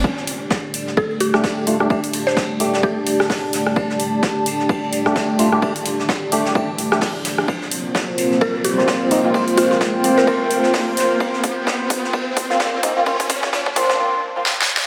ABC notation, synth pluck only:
X:1
M:4/4
L:1/16
Q:"Swing 16ths" 1/4=129
K:Gm
V:1 name="Synth pluck"
z8 A z G z4 z | z3 c z4 G3 z4 z | z16 | z16 |
z8 B z G z4 z | z2 F F z3 B B z6 z | z16 | z16 |]